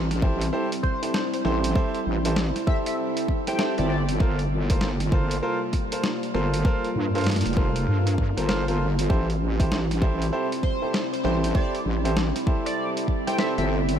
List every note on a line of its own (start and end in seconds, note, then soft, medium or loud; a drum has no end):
0.00 0.51 A1 loud
0.00 4.16 C3 medium
0.00 4.17 G3 medium
0.00 4.16 C4 medium
0.00 4.17 E4 medium
0.11 snare soft
0.11 closed hi-hat medium
0.22 0.44 E4 loud
0.22 0.44 G4 medium
0.22 0.44 A4 medium
0.22 0.44 C5 loud
0.22 kick loud
0.41 closed hi-hat medium
0.53 0.68 E4 medium
0.53 0.68 G4 medium
0.53 0.68 A4 medium
0.53 0.68 C5 loud
0.72 closed hi-hat medium
0.83 1.09 C5 loud
0.83 kick medium
1.03 1.12 E4 medium
1.03 1.12 G4 medium
1.03 1.12 A4 medium
1.03 1.12 C5 medium
1.03 closed hi-hat medium
1.14 1.26 C5 loud
1.14 snare loud
1.34 1.41 C5 medium
1.34 closed hi-hat soft
1.45 1.74 A1 loud
1.45 1.73 E4 medium
1.45 1.73 G4 medium
1.45 1.73 A4 medium
1.45 1.57 C5 medium
1.45 1.73 C5 medium
1.45 snare medium
1.64 1.71 C5 medium
1.64 closed hi-hat medium
1.75 1.97 E4 loud
1.75 1.98 G4 medium
1.75 1.98 A4 medium
1.75 1.98 C5 loud
1.75 kick loud
1.75 snare soft
1.95 closed hi-hat soft
2.06 2.53 A1 loud
2.25 2.34 E4 medium
2.25 2.34 G4 medium
2.25 2.34 A4 medium
2.25 2.34 C5 medium
2.25 closed hi-hat medium
2.36 snare loud
2.56 snare soft
2.56 closed hi-hat medium
2.67 3.43 E4 medium
2.67 3.43 G4 medium
2.67 3.43 A4 medium
2.67 3.43 C5 medium
2.67 2.79 E5 medium
2.67 kick loud
2.86 2.94 E5 medium
2.86 closed hi-hat medium
3.17 closed hi-hat medium
3.28 kick medium
3.47 3.57 E4 medium
3.47 3.57 G4 medium
3.47 3.56 A4 medium
3.47 3.57 C5 medium
3.47 3.75 G5 loud
3.47 snare soft
3.47 closed hi-hat medium
3.49 snare soft
3.53 snare soft
3.55 snare soft
3.57 snare soft
3.59 3.74 E4 medium
3.59 3.74 G4 medium
3.59 3.74 A4 medium
3.59 3.74 C5 loud
3.59 snare loud
3.78 4.19 G1 loud
3.78 3.94 E4 medium
3.78 3.94 G4 medium
3.78 3.94 A4 medium
3.78 3.94 C5 medium
3.78 3.86 D5 medium
3.78 closed hi-hat soft
3.89 4.02 D5 medium
4.09 closed hi-hat medium
4.20 4.80 G1 loud
4.20 13.99 C3 medium
4.20 9.06 G3 medium
4.20 9.06 A#3 medium
4.20 4.35 F4 medium
4.20 9.06 F4 medium
4.20 4.35 A4 medium
4.20 4.35 A#4 medium
4.20 4.35 C5 loud
4.20 kick loud
4.20 snare soft
4.39 closed hi-hat soft
4.70 4.86 F4 medium
4.70 4.86 A4 medium
4.70 4.86 A#4 medium
4.70 4.86 C5 loud
4.70 kick loud
4.70 closed hi-hat medium
4.81 5.41 G1 medium
4.81 snare loud
5.00 snare soft
5.00 closed hi-hat medium
5.12 5.34 F4 medium
5.12 5.34 A4 medium
5.12 5.34 A#4 medium
5.12 5.34 C5 loud
5.12 kick loud
5.31 closed hi-hat medium
5.43 5.58 F4 medium
5.43 5.58 A4 medium
5.43 5.58 A#4 medium
5.43 5.58 C5 loud
5.73 kick medium
5.73 closed hi-hat medium
5.92 6.01 F4 medium
5.92 6.01 A4 medium
5.92 6.01 A#4 medium
5.92 6.01 C5 medium
5.92 closed hi-hat medium
6.04 snare loud
6.23 closed hi-hat soft
6.34 6.63 G1 medium
6.34 6.62 F4 medium
6.34 6.62 A4 medium
6.34 6.62 A#4 medium
6.34 6.62 C5 medium
6.34 snare medium
6.54 closed hi-hat medium
6.65 6.87 F4 loud
6.65 6.87 A4 medium
6.65 6.87 A#4 medium
6.65 6.87 C5 loud
6.65 kick loud
6.65 snare soft
6.85 closed hi-hat soft
6.95 7.42 G2 loud
7.15 7.24 F4 medium
7.15 7.24 A4 medium
7.15 7.24 A#4 medium
7.15 7.24 C5 medium
7.15 closed hi-hat soft
7.18 closed hi-hat soft
7.21 closed hi-hat soft
7.24 snare loud
7.24 closed hi-hat soft
7.27 snare medium
7.27 closed hi-hat soft
7.31 snare medium
7.31 closed hi-hat medium
7.36 snare medium
7.36 closed hi-hat medium
7.41 snare soft
7.41 closed hi-hat medium
7.46 7.86 F1 medium
7.46 snare soft
7.46 closed hi-hat soft
7.53 8.33 F4 medium
7.53 8.33 A4 medium
7.53 8.33 A#4 medium
7.53 8.33 C5 medium
7.53 kick loud
7.53 closed hi-hat soft
7.76 closed hi-hat medium
7.87 8.34 G2 loud
8.07 closed hi-hat medium
8.18 kick medium
8.37 9.08 G1 medium
8.37 8.46 F4 medium
8.37 8.46 A4 medium
8.37 8.46 A#4 medium
8.37 8.46 C5 medium
8.37 snare soft
8.37 closed hi-hat medium
8.48 8.63 F4 medium
8.48 8.63 A4 medium
8.48 8.63 A#4 medium
8.48 8.63 C5 loud
8.48 snare loud
8.68 8.84 F4 medium
8.68 8.84 A4 medium
8.68 8.84 A#4 medium
8.68 8.84 C5 medium
8.68 closed hi-hat soft
8.99 closed hi-hat medium
9.10 9.70 A1 medium
9.10 13.96 G3 medium
9.10 13.99 C4 medium
9.10 9.25 E4 medium
9.10 13.96 E4 medium
9.10 9.25 G4 medium
9.10 9.25 A4 medium
9.10 9.25 C5 loud
9.10 kick loud
9.10 snare soft
9.30 closed hi-hat soft
9.59 9.76 E4 medium
9.59 9.76 G4 medium
9.59 9.76 A4 medium
9.59 9.76 C5 medium
9.59 kick loud
9.59 closed hi-hat medium
9.71 10.31 A1 medium
9.71 snare loud
9.91 snare soft
9.91 closed hi-hat medium
10.02 10.24 E4 loud
10.02 10.24 G4 medium
10.02 10.24 A4 medium
10.02 10.24 C5 loud
10.02 kick loud
10.22 closed hi-hat medium
10.32 10.47 E4 medium
10.32 10.48 G4 medium
10.32 10.48 A4 medium
10.32 10.48 C5 loud
10.52 closed hi-hat medium
10.63 10.89 C5 medium
10.63 kick medium
10.82 10.91 E4 medium
10.82 10.91 G4 medium
10.82 10.91 A4 medium
10.82 10.91 C5 medium
10.93 11.06 C5 medium
10.93 snare loud
11.13 11.20 C5 medium
11.13 closed hi-hat soft
11.23 11.53 A1 medium
11.23 11.52 E4 medium
11.23 11.52 G4 medium
11.23 11.52 A4 medium
11.23 11.36 C5 medium
11.23 11.52 C5 medium
11.23 snare medium
11.43 11.51 C5 medium
11.43 closed hi-hat medium
11.54 11.77 E4 loud
11.54 11.77 G4 medium
11.54 11.77 A4 medium
11.54 11.77 C5 loud
11.54 11.81 D5 loud
11.54 kick loud
11.54 snare soft
11.75 closed hi-hat soft
11.85 12.32 A1 loud
12.05 12.14 E4 medium
12.05 12.14 G4 medium
12.05 12.14 A4 medium
12.05 12.14 C5 medium
12.05 closed hi-hat medium
12.17 snare loud
12.36 snare soft
12.36 closed hi-hat medium
12.47 13.23 E4 medium
12.47 13.23 G4 medium
12.47 13.23 A4 medium
12.47 13.23 C5 medium
12.47 kick loud
12.66 12.89 D5 loud
12.66 closed hi-hat medium
12.97 closed hi-hat medium
13.08 kick medium
13.27 13.36 E4 medium
13.27 13.36 G4 medium
13.27 13.36 A4 medium
13.27 13.36 C5 loud
13.27 13.36 G5 medium
13.27 snare soft
13.27 closed hi-hat medium
13.39 13.53 E4 medium
13.39 13.53 G4 medium
13.39 13.53 A4 medium
13.39 13.53 C5 loud
13.39 13.51 E5 loud
13.39 snare loud
13.58 13.98 G1 loud
13.58 13.74 E4 medium
13.58 13.74 G4 medium
13.58 13.74 A4 medium
13.58 13.74 C5 medium
13.58 13.65 E5 medium
13.58 closed hi-hat soft
13.89 closed hi-hat medium